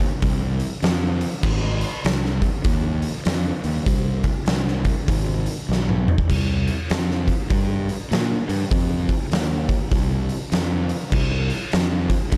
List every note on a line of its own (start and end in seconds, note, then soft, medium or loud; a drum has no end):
0.00 kick medium
0.22 0.61 C2 medium
0.22 kick loud
0.22 open hi-hat medium
0.60 open hi-hat medium
0.82 1.21 F2 medium
0.82 snare medium
0.82 open hi-hat medium
1.21 open hi-hat medium
1.43 1.82 G#1 loud
1.43 kick loud
1.43 crash loud
1.81 open hi-hat medium
2.04 2.43 C2 loud
2.04 snare loud
2.04 open hi-hat medium
2.25 snare soft
2.42 kick medium
2.42 open hi-hat medium
2.64 3.04 D#2 medium
2.64 kick loud
2.64 open hi-hat medium
3.02 open hi-hat medium
3.25 3.50 F2 loud
3.25 snare loud
3.25 open hi-hat medium
3.64 3.79 D#2 medium
3.64 open hi-hat medium
3.86 4.25 C2 loud
3.86 kick loud
3.86 open hi-hat medium
4.24 kick medium
4.24 open hi-hat medium
4.46 4.86 C2 loud
4.46 snare loud
4.46 open hi-hat medium
4.68 snare soft
4.85 kick medium
4.85 open hi-hat medium
5.08 5.47 G#1 medium
5.08 kick loud
5.08 open hi-hat medium
5.46 open hi-hat medium
5.69 6.07 B1 medium
5.69 snare medium
5.89 mid tom medium
6.08 mid tom loud
6.18 kick loud
6.30 6.68 C2 loud
6.30 kick loud
6.30 open hi-hat medium
6.30 crash loud
6.67 open hi-hat medium
6.90 7.29 F2 medium
6.90 snare loud
6.90 open hi-hat medium
7.11 snare soft
7.28 kick medium
7.28 open hi-hat medium
7.50 7.89 G2 medium
7.50 kick loud
7.50 open hi-hat medium
7.89 open hi-hat medium
8.11 8.35 A#2 medium
8.11 snare loud
8.11 open hi-hat medium
8.49 8.63 G2 medium
8.49 open hi-hat medium
8.71 9.10 F2 loud
8.71 kick loud
8.71 open hi-hat medium
9.09 kick medium
9.09 open hi-hat medium
9.31 9.70 D#2 loud
9.31 snare loud
9.31 open hi-hat medium
9.69 kick medium
9.69 open hi-hat medium
9.91 10.30 C2 medium
9.91 kick loud
9.91 open hi-hat medium
10.29 open hi-hat medium
10.52 10.90 F2 medium
10.52 snare loud
10.52 open hi-hat medium
10.89 open hi-hat medium
11.12 11.51 C2 loud
11.12 kick loud
11.12 crash loud
11.50 open hi-hat medium
11.72 12.11 F2 loud
11.72 snare loud
11.72 open hi-hat medium
12.10 kick medium
12.10 open hi-hat medium
12.32 12.37 G2 medium
12.32 kick loud
12.32 open hi-hat medium